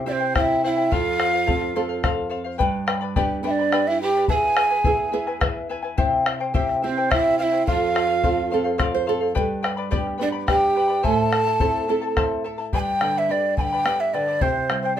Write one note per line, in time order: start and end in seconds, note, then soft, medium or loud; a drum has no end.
0.00 0.88 C3 medium
0.06 0.62 C4 soft
0.06 0.34 C4 medium
0.06 0.20 E4 medium
0.06 0.62 E4 soft
0.06 0.62 G4 soft
0.06 0.20 C5 medium
0.06 0.13 D5 medium
0.06 0.21 E5 medium
0.06 0.19 G5 medium
0.12 0.34 C5 medium
0.20 0.34 E4 soft
0.20 0.34 C5 soft
0.20 0.34 G5 medium
0.34 0.63 E4 medium
0.34 0.62 E4 medium
0.34 0.63 G4 medium
0.34 0.63 C5 medium
0.34 0.62 E5 medium
0.34 0.42 F5 medium
0.34 0.63 G5 medium
0.34 bombo rim medium
0.34 bombo low medium
0.41 0.62 E5 medium
0.63 0.77 E4 medium
0.63 0.95 E4 medium
0.63 0.76 C5 medium
0.63 0.78 E5 medium
0.63 0.70 F5 medium
0.63 0.76 G5 medium
0.69 0.95 E5 medium
0.77 0.92 E4 soft
0.77 0.90 C5 soft
0.77 0.91 G5 soft
0.91 2.57 F2 medium
0.91 2.05 F4 medium
0.91 1.18 A4 medium
0.91 1.19 C5 medium
0.91 1.19 F5 medium
0.91 2.05 F5 loud
0.91 bombo low medium
1.19 1.34 A4 medium
1.19 1.33 C5 medium
1.19 1.32 F5 medium
1.19 bombo rim medium
1.34 1.46 C5 soft
1.34 1.46 F5 medium
1.47 1.75 C4 soft
1.47 1.75 F4 soft
1.47 1.74 A4 medium
1.47 1.76 A4 medium
1.47 1.75 C5 medium
1.47 1.76 F5 medium
1.47 bombo rim soft
1.47 bombo low medium
1.62 bombo rim soft
1.76 2.31 C4 soft
1.76 2.31 F4 soft
1.76 1.90 A4 medium
1.76 2.31 A4 medium
1.76 1.89 C5 medium
1.76 1.88 F5 medium
1.89 2.03 C5 soft
1.89 2.03 F5 medium
2.03 2.28 A4 medium
2.03 2.29 C5 medium
2.03 2.30 F5 medium
2.03 bombo rim medium
2.03 bombo low medium
2.30 2.45 A4 medium
2.30 2.44 C5 medium
2.30 2.43 F5 medium
2.44 2.58 C5 soft
2.44 2.59 F5 medium
2.58 4.26 G2 medium
2.58 2.88 G4 medium
2.58 2.87 B4 medium
2.58 2.87 D5 medium
2.58 2.85 G5 medium
2.58 2.87 B5 medium
2.58 bombo low medium
2.87 3.01 B4 medium
2.87 3.00 D5 medium
2.87 3.02 G5 medium
2.87 3.00 B5 medium
2.87 bombo rim medium
3.01 3.15 B4 soft
3.01 3.15 D5 medium
3.01 3.16 B5 medium
3.16 3.42 B3 soft
3.16 3.42 D4 soft
3.16 3.45 G4 medium
3.16 3.43 G4 medium
3.16 3.43 B4 medium
3.16 3.44 D5 medium
3.16 3.43 G5 medium
3.16 3.44 B5 medium
3.16 bombo rim soft
3.16 bombo low medium
3.43 3.99 B3 soft
3.43 3.99 D4 soft
3.43 3.99 G4 medium
3.43 3.59 B4 medium
3.43 3.58 D5 medium
3.43 3.52 E5 medium
3.43 3.59 G5 medium
3.43 3.58 B5 medium
3.47 3.90 D4 medium
3.47 3.89 D5 medium
3.59 3.72 B4 soft
3.59 3.72 D5 soft
3.59 3.72 B5 soft
3.72 4.01 G4 medium
3.72 4.01 B4 medium
3.72 4.02 D5 medium
3.72 4.00 G5 medium
3.72 4.02 B5 medium
3.72 bombo rim medium
3.87 4.02 E4 medium
3.87 4.01 E5 medium
4.01 4.28 G4 medium
4.01 4.16 B4 medium
4.01 4.15 D5 medium
4.01 4.28 G5 medium
4.01 4.16 G5 medium
4.01 4.15 B5 medium
4.16 4.28 B4 soft
4.16 4.29 D5 soft
4.16 4.30 B5 soft
4.28 5.94 E2 medium
4.28 4.55 E4 medium
4.28 4.58 G#4 medium
4.28 5.39 G#4 medium
4.28 4.56 B4 medium
4.28 4.55 E5 medium
4.28 4.57 G#5 medium
4.28 5.38 G#5 loud
4.28 4.33 A5 medium
4.28 bombo low medium
4.43 bombo rim soft
4.56 4.70 E4 medium
4.56 4.70 B4 medium
4.56 4.71 E5 medium
4.56 4.69 G#5 medium
4.56 bombo rim medium
4.70 4.84 E4 soft
4.70 4.83 B4 soft
4.70 4.83 G#5 medium
4.70 bombo rim soft
4.84 5.12 B3 soft
4.84 5.12 E4 medium
4.84 5.12 E4 soft
4.84 5.13 G#4 medium
4.84 5.12 G#4 soft
4.84 5.12 B4 medium
4.84 5.11 E5 medium
4.84 5.12 G#5 medium
4.84 bombo low medium
5.12 5.68 B3 soft
5.12 5.27 E4 medium
5.12 5.69 E4 soft
5.12 5.69 G#4 medium
5.12 5.26 B4 medium
5.12 5.27 E5 medium
5.12 5.26 G#5 medium
5.27 5.40 E4 soft
5.27 5.40 B4 soft
5.27 5.40 G#5 medium
5.27 bombo rim soft
5.40 5.68 E4 medium
5.40 5.70 G#4 medium
5.40 5.69 B4 medium
5.40 5.68 E5 medium
5.40 5.70 G#5 medium
5.40 bombo rim medium
5.40 bombo low medium
5.69 5.83 E4 medium
5.69 5.83 B4 medium
5.69 5.84 E5 medium
5.69 5.81 G#5 medium
5.83 5.96 E4 soft
5.83 5.98 B4 soft
5.83 5.98 G#5 medium
5.98 7.63 C3 medium
5.98 6.25 E4 medium
5.98 6.26 G4 medium
5.98 6.26 C5 medium
5.98 6.24 E5 medium
5.98 6.26 G5 medium
5.98 bombo low medium
6.26 6.40 E4 medium
6.26 6.40 C5 medium
6.26 6.40 E5 medium
6.26 6.39 G5 medium
6.26 bombo rim medium
6.40 6.53 E4 soft
6.40 6.53 C5 medium
6.40 6.53 G5 medium
6.54 6.82 C4 soft
6.54 6.82 E4 medium
6.54 6.82 E4 soft
6.54 6.83 G4 medium
6.54 6.82 C5 medium
6.54 6.81 E5 medium
6.54 6.83 G5 medium
6.54 bombo rim soft
6.54 bombo low medium
6.69 bombo rim soft
6.82 7.38 C4 soft
6.82 7.14 C4 medium
6.82 6.97 E4 medium
6.82 7.38 E4 soft
6.82 7.38 G4 medium
6.82 6.97 C5 medium
6.82 7.13 C5 medium
6.82 6.97 E5 medium
6.82 6.96 G5 medium
6.97 7.09 E4 soft
6.97 7.09 C5 soft
6.97 7.10 G5 soft
7.10 7.38 E4 medium
7.10 7.40 E4 medium
7.10 7.39 G4 medium
7.10 7.39 C5 medium
7.10 7.38 E5 medium
7.10 7.39 G5 medium
7.10 bombo rim medium
7.10 bombo low medium
7.39 7.52 E4 medium
7.39 7.66 E4 medium
7.39 7.52 C5 medium
7.39 7.53 E5 medium
7.39 7.65 E5 medium
7.39 7.44 F5 medium
7.39 7.51 G5 medium
7.52 7.68 E4 soft
7.52 7.66 C5 soft
7.52 7.67 G5 medium
7.67 9.32 F2 medium
7.67 8.77 F4 medium
7.67 7.93 A4 medium
7.67 7.93 C5 medium
7.67 8.76 F5 loud
7.67 7.94 F5 medium
7.67 bombo low medium
7.94 8.09 A4 medium
7.94 8.08 C5 medium
7.94 8.08 F5 medium
7.94 bombo rim medium
8.09 8.22 C5 soft
8.09 8.23 F5 medium
8.22 8.52 C4 soft
8.22 8.52 F4 soft
8.22 8.49 A4 medium
8.22 8.52 A4 soft
8.22 8.50 C5 medium
8.22 8.51 F5 medium
8.22 bombo rim soft
8.22 bombo low medium
8.37 bombo rim soft
8.50 9.07 C4 soft
8.50 9.07 F4 soft
8.50 8.65 A4 medium
8.50 8.80 A4 medium
8.50 8.64 C5 medium
8.50 8.63 F5 medium
8.64 8.77 C5 soft
8.64 8.78 F5 medium
8.78 9.05 A4 medium
8.78 9.06 C5 medium
8.78 8.93 D5 medium
8.78 9.06 F5 medium
8.78 bombo rim medium
8.78 bombo low medium
8.95 9.07 C5 medium
9.06 9.21 A4 medium
9.06 9.35 A4 medium
9.06 9.20 C5 medium
9.06 9.19 F5 medium
9.21 9.34 C5 soft
9.21 9.34 F5 medium
9.35 11.01 G2 medium
9.35 9.64 G4 medium
9.35 9.62 B4 medium
9.35 9.62 D5 medium
9.35 9.61 G5 medium
9.35 9.63 B5 medium
9.35 bombo low medium
9.63 9.77 B4 medium
9.63 9.77 D5 medium
9.63 9.77 G5 medium
9.63 9.76 B5 medium
9.63 bombo rim medium
9.77 9.90 B4 soft
9.77 9.90 D5 medium
9.77 9.91 B5 medium
9.91 10.20 B3 soft
9.91 10.20 D4 soft
9.91 10.20 G4 medium
9.91 10.17 B4 medium
9.91 10.18 D5 medium
9.91 10.17 G5 medium
9.91 10.18 B5 medium
9.91 bombo rim soft
9.91 bombo low medium
10.07 bombo rim soft
10.18 10.75 B3 medium
10.18 10.75 D4 soft
10.18 10.75 G4 medium
10.18 10.33 B4 medium
10.18 10.32 D5 medium
10.18 10.33 G5 medium
10.18 10.31 B5 medium
10.22 10.28 D4 medium
10.22 10.28 D5 medium
10.32 10.47 B4 soft
10.32 10.47 D5 soft
10.32 10.47 B5 medium
10.47 10.76 G4 medium
10.47 11.07 G4 medium
10.47 10.75 B4 medium
10.47 10.75 D5 medium
10.47 10.74 G5 medium
10.47 11.06 G5 loud
10.47 10.76 B5 medium
10.47 bombo rim medium
10.47 bombo low medium
10.75 10.89 B4 medium
10.75 10.88 D5 medium
10.75 10.90 G5 medium
10.75 10.87 B5 medium
10.88 11.04 B4 soft
10.88 11.03 D5 soft
10.88 11.03 B5 soft
11.03 12.70 A2 medium
11.03 11.32 E4 medium
11.03 11.32 A4 medium
11.03 12.17 A4 medium
11.03 11.32 C5 medium
11.03 11.32 E5 medium
11.03 11.32 A5 medium
11.03 12.17 A5 loud
11.03 bombo low medium
11.33 11.46 E4 medium
11.33 11.46 A4 medium
11.33 11.47 E5 medium
11.33 11.45 A5 medium
11.33 bombo rim medium
11.46 11.60 E4 soft
11.46 11.59 A4 soft
11.46 11.60 A5 medium
11.60 11.88 C4 soft
11.60 11.88 E4 soft
11.60 11.87 E4 medium
11.60 11.87 A4 medium
11.60 11.89 A4 medium
11.60 11.89 C5 medium
11.60 11.87 E5 medium
11.60 11.88 A5 medium
11.60 bombo low medium
11.88 12.44 C4 soft
11.88 12.02 E4 medium
11.88 12.44 E4 soft
11.88 12.01 A4 medium
11.88 12.44 A4 medium
11.88 12.02 E5 medium
11.88 12.00 A5 medium
12.02 12.16 E4 soft
12.02 12.16 A4 soft
12.02 12.16 A5 medium
12.17 12.43 E4 medium
12.17 12.44 A4 medium
12.17 12.45 C5 medium
12.17 12.43 E5 medium
12.17 12.44 A5 medium
12.17 bombo rim medium
12.17 bombo low medium
12.44 12.58 E4 medium
12.44 12.58 A4 medium
12.44 12.59 E5 medium
12.44 12.57 A5 medium
12.58 12.73 E4 soft
12.58 12.73 A4 soft
12.58 12.73 A5 medium
12.73 14.38 G2 medium
12.73 13.01 G4 medium
12.73 13.01 B4 medium
12.73 13.01 D5 medium
12.73 13.00 G5 medium
12.73 12.80 G#5 medium
12.73 13.02 B5 medium
12.73 bombo low medium
12.79 13.20 G5 medium
13.01 13.29 D3 soft
13.01 13.16 B4 medium
13.01 13.16 D5 medium
13.01 13.15 G5 medium
13.01 13.15 B5 medium
13.01 bombo rim medium
13.16 13.29 B4 soft
13.16 13.29 D5 soft
13.16 13.33 E5 medium
13.16 13.29 B5 soft
13.29 13.57 D4 medium
13.29 13.58 G4 medium
13.29 13.57 B4 medium
13.29 13.57 D5 medium
13.29 13.57 G5 medium
13.29 13.58 B5 medium
13.57 13.85 D3 medium
13.57 13.72 B4 medium
13.57 13.72 D5 medium
13.57 13.72 G5 medium
13.57 13.62 G#5 medium
13.57 13.71 B5 medium
13.57 bombo low medium
13.61 14.02 G5 medium
13.73 13.85 B4 soft
13.73 13.85 D5 soft
13.73 13.86 B5 soft
13.85 14.12 B3 soft
13.85 14.14 G4 medium
13.85 14.13 B4 medium
13.85 14.13 D5 medium
13.85 14.12 G5 medium
13.85 14.14 B5 medium
13.85 bombo rim medium
14.00 14.15 E5 medium
14.13 14.41 D3 medium
14.13 14.28 B4 medium
14.13 14.43 D5 medium
14.13 14.27 D5 medium
14.13 14.28 G5 medium
14.13 14.26 B5 medium
14.13 bombo rim soft
14.28 14.42 B4 soft
14.28 14.42 D5 soft
14.28 14.42 B5 soft
14.41 15.00 C3 medium
14.41 14.69 E4 medium
14.41 14.70 G4 medium
14.41 14.82 C5 medium
14.41 14.70 C5 medium
14.41 14.68 E5 medium
14.41 14.70 G5 medium
14.41 bombo low medium
14.70 14.97 G3 medium
14.70 14.84 E4 medium
14.70 14.84 C5 medium
14.70 14.84 E5 medium
14.70 14.84 G5 medium
14.70 bombo rim medium
14.82 14.96 C5 medium
14.82 14.97 C5 soft
14.82 14.97 G5 medium
14.86 14.96 E4 soft
14.96 15.00 G4 medium
14.96 15.00 D5 medium